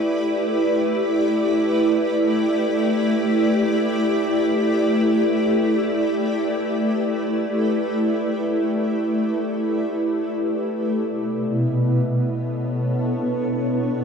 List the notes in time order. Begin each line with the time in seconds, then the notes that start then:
Already playing: A3 E4 G4 B4 D5
10.79 B2
11.82 B3
11.95 A4
12.15 C#5
12.75 D4